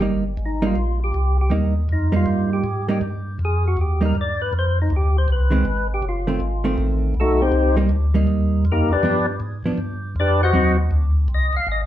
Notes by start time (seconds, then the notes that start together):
0.00 G1 G3 A#3 D#4
0.37 G#1
0.46 D#4
0.62 G3 A#3 D#4
0.66 F4
0.76 A#1
1.04 G4
1.14 C2
1.41 G4
1.50 D#2 G3 A#3 D#4
1.89 F2 D#4
2.12 G3 A#3 D#4
2.16 F4
2.26 G2
2.53 G4
2.64 G#2
2.88 G3 A#3 D#4 G4
3.01 G2
3.39 F2
3.45 G#4
3.68 F#4
3.77 D#2
3.81 G4
4.01 G3 A#3 D#4
4.05 A#4
4.15 G2
4.21 D5
4.42 B4
4.53 F2
4.59 C5
4.82 D#4
4.90 D2
4.96 G4
5.18 C5
5.28 C2
5.32 B4
5.50 D#3 G#3 C4
5.65 G#1
5.94 G4
6.02 F#1
6.09 F4
6.27 D#3 A3 C4
6.40 G#1
6.64 D#3 A3 C4
6.78 A1
7.14 B1
7.20 A3 D#4 F#4 A4
7.42 C4 D#4 G4 C5
7.52 C2
7.76 G3 A#3 D#4
7.89 D2
8.14 G3 A#3 D#4
8.27 D#2
8.65 F2
8.72 A#3 D#4 G4 A#4
8.89 F2 D4 G4 B4 D5
9.03 G2 F3 B3 D4
9.40 G#2
9.64 G#2 F3 B3 D4
9.78 G2
10.16 F2 D4 D5
10.20 G4 B4
10.43 F#4 C5 D#5 F#5
10.53 D#2 F#3 C4 D#4
10.91 D2
11.28 C2
11.34 D#5
11.53 C2 F5
11.67 G#1
11.72 D#5